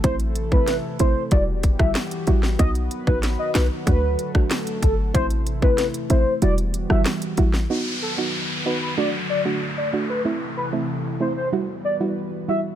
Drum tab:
HH |xxx-x-x-x-x-xxx-|xxx-x-x-x-x-xxx-|xxx-xxx-xxx-xxx-|----------------|
SD |----o------ro--o|----o-o----ro---|----o------ro--o|----------------|
BD |o--o----o-oo----|o--o----o--o--o-|o--o------------|----------------|

HH |----------------|
SD |----------------|
BD |----------------|